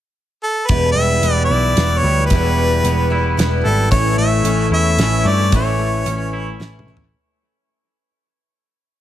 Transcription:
0.43 A4
0.67 E1 E2 B2 E3 G3 B3 E4 B4, kick, closed hi-hat
0.92 E1 E5
0.98 G3
1.22 E1 E3 G3 B3 E4, closed hi-hat
1.45 D5
1.50 B1 E3 G3 B3 E4
1.75 E1 E3 G3 B3 E4, snare, closed hi-hat
1.98 C#5
2.03 D2 E3 G3 B3 E4
2.26 B4, closed hi-hat
2.31 E1 E2 B2 E3 G3 B3 E4, kick
2.58 G3
2.84 E1 E3 G3 B3 E4, closed hi-hat
3.10 E3 G3 B3 E4
3.37 E1 E3 G3 B3 E4, snare, closed hi-hat
3.65 G#1 E3 G3 B3 E4 A4
3.91 A1 A2 E3 A3 C#4 E4 A4 C#5, kick, closed hi-hat
4.17 A1 A3 E5
4.43 A1 E3 A3 C#4 E4, closed hi-hat
4.71 E2 E4 E5
4.98 A1 E3 A3 C#4 E4, snare, closed hi-hat
5.25 G2 A3 E4 D5
5.29 A3 C#4
5.52 A1 A2 E3 A3 C#4 E4, kick, closed hi-hat
5.56 C#5
5.79 A3
6.06 A1 A3 C#4 E4, closed hi-hat
6.33 E4
6.60 A1 E3 A3 C#4 E4, snare
6.79 mid tom
6.87 A1 A3 C#4 E4
6.97 floor tom

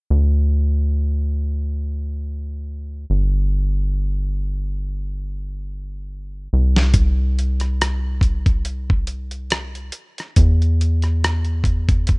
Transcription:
0.10 D2
3.10 G1
6.53 C2
6.76 snare
6.94 kick, closed hi-hat
7.39 closed hi-hat
7.60 cross-stick, closed hi-hat
7.81 cross-stick, closed hi-hat
8.21 kick, closed hi-hat
8.46 kick, closed hi-hat
8.65 closed hi-hat
8.90 kick
9.07 closed hi-hat
9.31 closed hi-hat
9.50 cross-stick, closed hi-hat
9.75 closed hi-hat
9.92 closed hi-hat
10.18 cross-stick, closed hi-hat
10.36 E2, kick, closed hi-hat
10.62 closed hi-hat
10.81 closed hi-hat
11.02 cross-stick, closed hi-hat
11.24 cross-stick, closed hi-hat
11.45 closed hi-hat
11.64 kick, closed hi-hat
11.89 kick, closed hi-hat
12.07 kick, closed hi-hat

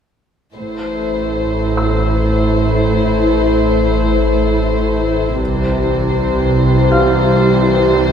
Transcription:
0.54 A1 A2 A3 E4 C5
1.77 E6
5.39 C2 C3 E3 G3 C5
6.92 F5 F6

